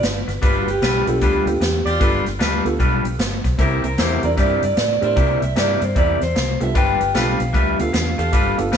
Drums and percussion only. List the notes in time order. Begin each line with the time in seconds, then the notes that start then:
0.03 snare, closed hi-hat
0.29 snare, closed hi-hat
0.43 kick, closed hi-hat
0.68 closed hi-hat
0.82 snare, closed hi-hat
1.07 closed hi-hat
1.21 kick, closed hi-hat
1.47 closed hi-hat
1.61 snare, closed hi-hat
1.87 closed hi-hat
2.01 kick, closed hi-hat
2.26 snare, closed hi-hat
2.40 snare, closed hi-hat
2.66 closed hi-hat
2.80 kick, closed hi-hat
3.05 closed hi-hat
3.19 snare, closed hi-hat
3.44 kick, snare, closed hi-hat
3.59 kick, closed hi-hat
3.84 closed hi-hat
3.98 snare, closed hi-hat
4.23 closed hi-hat
4.37 kick, snare, closed hi-hat
4.63 closed hi-hat
4.77 snare, closed hi-hat
5.02 closed hi-hat
5.17 kick, closed hi-hat
5.42 closed hi-hat
5.56 snare, closed hi-hat
5.82 closed hi-hat
5.96 kick, closed hi-hat
6.21 snare, closed hi-hat
6.36 snare, closed hi-hat
6.61 closed hi-hat
6.75 kick, closed hi-hat
7.01 closed hi-hat
7.15 snare, closed hi-hat
7.40 closed hi-hat
7.54 kick, closed hi-hat
7.79 closed hi-hat
7.94 snare, closed hi-hat
8.19 closed hi-hat
8.33 kick, closed hi-hat
8.59 closed hi-hat
8.73 snare, closed hi-hat